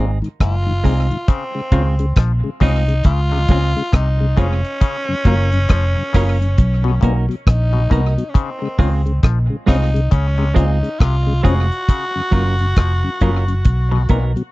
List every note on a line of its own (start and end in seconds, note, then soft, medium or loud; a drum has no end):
0.00 0.21 G#1 medium
0.00 0.11 A#2 medium
0.00 0.17 G#3 medium
0.00 0.17 C4 medium
0.00 0.18 D#4 medium
0.00 0.18 G#4 medium
0.22 0.29 G#2 medium
0.22 0.29 D#3 medium
0.22 closed hi-hat soft
0.40 0.81 F#1 medium
0.40 0.56 G#2 medium
0.40 1.30 F4 loud
0.40 kick loud
0.40 cross-stick loud
0.40 closed hi-hat medium
0.66 0.73 G#2 medium
0.66 0.73 D#3 medium
0.84 1.09 C2 medium
0.84 1.00 A#2 medium
0.84 1.06 G#3 medium
0.84 0.94 G#3 medium
0.84 1.06 C4 medium
0.84 0.94 C4 medium
0.84 0.94 D#4 medium
0.84 1.07 D#4 medium
0.84 1.06 G#4 medium
0.84 kick medium
0.84 open hi-hat medium
1.10 1.17 G#2 medium
1.10 1.17 D#3 medium
1.10 closed hi-hat soft
1.28 1.44 C#3 medium
1.28 2.17 C4 loud
1.28 kick loud
1.28 closed hi-hat medium
1.55 1.61 C#3 medium
1.55 1.61 G#3 medium
1.72 2.13 C#2 loud
1.72 1.88 D#3 medium
1.72 1.94 G#3 medium
1.72 1.94 C4 medium
1.72 1.82 C4 medium
1.72 1.82 C#4 medium
1.72 1.82 F4 medium
1.72 1.95 F4 medium
1.72 1.95 G#4 medium
1.72 kick loud
1.72 closed hi-hat medium
1.99 2.06 C#3 medium
1.99 2.06 G#3 medium
1.99 closed hi-hat medium
2.16 2.41 A#1 medium
2.16 2.32 F3 medium
2.16 kick loud
2.16 cross-stick loud
2.16 closed hi-hat medium
2.44 2.50 C#3 medium
2.44 2.50 G#3 medium
2.60 3.02 C2 loud
2.60 2.76 C#3 medium
2.60 2.83 G#3 medium
2.60 2.71 C4 medium
2.60 2.83 C4 medium
2.60 2.71 C#4 medium
2.60 3.03 D#4 loud
2.60 2.83 F4 medium
2.60 2.71 F4 medium
2.60 2.83 G#4 loud
2.60 kick medium
2.60 open hi-hat medium
2.88 2.94 C#3 medium
2.88 2.94 G#3 medium
2.88 closed hi-hat medium
3.04 3.46 C#2 loud
3.04 3.20 C#3 medium
3.04 3.97 F4 loud
3.04 kick loud
3.04 closed hi-hat medium
3.32 3.42 C3 medium
3.32 3.39 C#3 medium
3.32 3.39 G#3 medium
3.48 3.73 C#2 loud
3.48 3.64 A#2 medium
3.48 3.71 G#3 medium
3.48 3.59 C4 medium
3.48 3.72 C4 loud
3.48 3.60 C#4 medium
3.48 3.60 F4 medium
3.48 3.72 F4 loud
3.48 3.72 G#4 loud
3.48 kick loud
3.48 closed hi-hat medium
3.77 3.83 C#3 medium
3.77 3.83 G#3 medium
3.77 closed hi-hat soft
3.93 4.34 C2 loud
3.93 4.08 C3 medium
3.93 4.40 D#4 loud
3.93 kick loud
3.93 cross-stick loud
3.93 closed hi-hat medium
4.20 4.27 C#3 medium
4.20 4.27 G#3 medium
4.37 4.62 F1 medium
4.37 4.52 C#3 medium
4.37 4.59 G#3 medium
4.37 4.47 C4 medium
4.37 4.59 C4 medium
4.37 4.47 C#4 medium
4.37 7.24 C#4 loud
4.37 4.48 F4 medium
4.37 4.60 F4 loud
4.37 4.60 G#4 medium
4.37 kick loud
4.37 closed hi-hat medium
4.65 closed hi-hat soft
4.81 4.97 C#3 medium
4.81 kick loud
4.81 closed hi-hat medium
5.08 5.15 F#2 medium
5.08 5.15 C#3 medium
5.25 5.66 F#1 loud
5.25 5.41 D#3 medium
5.25 5.36 F#3 medium
5.25 5.36 A#3 medium
5.25 5.48 A#3 medium
5.25 5.48 C#4 medium
5.25 5.36 F4 medium
5.25 5.48 F4 medium
5.25 5.49 A#4 medium
5.25 kick loud
5.25 closed hi-hat medium
5.52 5.59 F#2 medium
5.52 5.59 C#3 medium
5.52 closed hi-hat medium
5.69 5.94 F1 loud
5.69 5.85 F3 medium
5.69 kick loud
5.69 cross-stick loud
5.69 closed hi-hat medium
5.97 6.03 F#2 medium
5.97 6.03 C#3 medium
6.13 6.55 F#1 loud
6.13 6.29 C#3 medium
6.13 6.24 F#3 medium
6.13 6.24 A#3 medium
6.13 6.36 A#3 medium
6.13 6.36 C#4 loud
6.13 6.24 F4 medium
6.13 6.37 F4 loud
6.13 6.37 A#4 loud
6.13 kick loud
6.13 cross-stick medium
6.13 open hi-hat medium
6.41 6.47 F#2 medium
6.41 6.47 C#3 medium
6.41 closed hi-hat medium
6.58 6.99 B1 loud
6.58 kick loud
6.58 closed hi-hat medium
6.84 6.95 B2 medium
6.84 6.91 B2 medium
6.84 6.91 F#3 medium
7.01 7.27 B1 medium
7.01 7.17 A#2 medium
7.01 7.12 A#3 medium
7.01 7.24 A#3 loud
7.01 7.13 B3 medium
7.01 7.13 D#4 medium
7.01 7.25 D#4 medium
7.01 7.25 F#4 medium
7.01 7.25 A#4 medium
7.01 kick medium
7.01 closed hi-hat medium
7.29 7.36 B2 medium
7.29 7.36 F#3 medium
7.29 closed hi-hat soft
7.47 7.87 A#1 medium
7.47 8.31 D#4 loud
7.47 kick loud
7.47 cross-stick loud
7.47 closed hi-hat medium
7.73 7.83 B2 medium
7.73 7.80 B2 medium
7.73 7.80 F#3 medium
7.90 8.15 C2 loud
7.90 8.06 B2 medium
7.90 8.01 A#3 medium
7.90 8.13 A#3 medium
7.90 8.01 B3 medium
7.90 8.01 D#4 medium
7.90 8.13 D#4 loud
7.90 8.13 F#4 medium
7.90 8.13 A#4 loud
7.90 kick loud
7.90 closed hi-hat medium
8.18 8.24 B2 medium
8.18 8.24 F#3 medium
8.18 closed hi-hat medium
8.30 8.38 C#4 medium
8.34 8.50 C#3 medium
8.34 9.24 C4 medium
8.34 kick loud
8.34 closed hi-hat loud
8.62 8.68 C#3 medium
8.62 8.68 G#3 medium
8.79 9.20 C#2 loud
8.79 8.94 D#3 medium
8.79 9.01 G#3 medium
8.79 9.01 C4 medium
8.79 8.89 C4 medium
8.79 8.89 C#4 medium
8.79 9.01 F4 medium
8.79 8.90 F4 medium
8.79 9.01 G#4 loud
8.79 kick loud
8.79 open hi-hat medium
9.06 9.12 C#3 medium
9.06 9.12 G#3 medium
9.06 closed hi-hat medium
9.23 9.48 A#1 loud
9.23 9.39 F3 medium
9.23 kick loud
9.23 cross-stick loud
9.23 closed hi-hat medium
9.50 9.56 C#3 medium
9.50 9.57 G#3 medium
9.66 10.09 C2 medium
9.66 9.83 C#3 medium
9.66 9.89 G#3 medium
9.66 9.89 C4 medium
9.66 9.77 C4 medium
9.66 9.78 C#4 medium
9.66 10.13 D#4 loud
9.66 9.89 F4 loud
9.66 9.78 F4 medium
9.66 9.90 G#4 loud
9.66 kick loud
9.66 cross-stick medium
9.66 open hi-hat medium
9.94 10.01 C#3 medium
9.94 10.01 G#3 medium
9.94 closed hi-hat medium
10.11 10.52 C#2 loud
10.11 10.27 C#3 medium
10.11 10.56 C#4 loud
10.11 kick loud
10.11 closed hi-hat medium
10.38 10.49 C3 medium
10.38 10.45 C#3 medium
10.38 10.45 G#3 medium
10.54 10.81 C#2 loud
10.54 10.71 A#2 medium
10.54 10.77 G#3 loud
10.54 10.77 C4 medium
10.54 10.65 C4 medium
10.54 10.66 C#4 medium
10.54 11.01 D#4 loud
10.54 10.78 F4 loud
10.54 10.66 F4 medium
10.54 10.78 G#4 medium
10.54 kick medium
10.54 closed hi-hat medium
10.83 10.89 C#3 medium
10.83 10.89 G#3 medium
10.83 closed hi-hat soft
11.00 11.41 C2 loud
11.00 11.16 C3 loud
11.00 11.44 F4 loud
11.00 kick loud
11.00 cross-stick loud
11.00 closed hi-hat medium
11.27 11.33 C#3 medium
11.27 11.33 G#3 medium
11.43 11.69 F1 loud
11.43 11.60 C#3 medium
11.43 11.66 G#3 medium
11.43 11.66 C4 medium
11.43 11.54 C4 medium
11.43 11.54 C#4 medium
11.43 11.66 F4 loud
11.43 11.55 F4 medium
11.43 14.29 F#4 loud
11.43 11.66 G#4 loud
11.43 kick medium
11.43 closed hi-hat medium
11.69 muted clean electric guitar stroke soft
11.69 closed hi-hat soft
11.89 12.05 C#3 medium
11.89 kick loud
11.89 closed hi-hat medium
12.15 12.22 F#2 medium
12.15 12.22 C#3 medium
12.31 12.73 F#1 medium
12.31 12.48 D#3 medium
12.31 12.54 F#3 medium
12.31 12.43 F#3 medium
12.31 12.43 A#3 medium
12.31 12.54 C#4 medium
12.31 12.54 F4 loud
12.31 12.43 F4 medium
12.31 12.54 A#4 loud
12.31 kick loud
12.31 closed hi-hat medium
12.59 12.66 F#2 medium
12.59 12.66 C#3 medium
12.59 closed hi-hat medium
12.76 13.01 F1 medium
12.76 12.93 F3 medium
12.76 kick loud
12.76 cross-stick loud
12.76 closed hi-hat medium
13.04 13.10 F#2 medium
13.04 13.10 C#3 medium
13.21 13.62 F#1 loud
13.21 13.37 C#3 medium
13.21 13.31 F#3 medium
13.21 13.43 F#3 medium
13.21 13.31 A#3 medium
13.21 13.43 C#4 medium
13.21 13.31 F4 medium
13.21 13.43 F4 loud
13.21 13.44 A#4 loud
13.21 kick medium
13.21 closed hi-hat medium
13.48 13.54 F#2 medium
13.48 13.54 C#3 medium
13.48 closed hi-hat medium
13.65 14.06 B1 loud
13.65 kick loud
13.65 closed hi-hat medium
13.92 14.02 B2 medium
13.92 13.99 B2 medium
13.92 13.98 F#3 medium
13.92 muted clean electric guitar stroke medium
14.09 14.34 B1 medium
14.09 14.25 A#2 medium
14.09 14.31 F#3 medium
14.09 14.19 A#3 medium
14.09 14.19 B3 medium
14.09 14.31 B3 medium
14.09 14.20 D#4 medium
14.09 14.32 D#4 loud
14.09 14.32 A#4 loud
14.09 kick medium
14.09 closed hi-hat medium
14.36 14.43 B2 medium
14.36 14.43 F#3 medium
14.36 closed hi-hat soft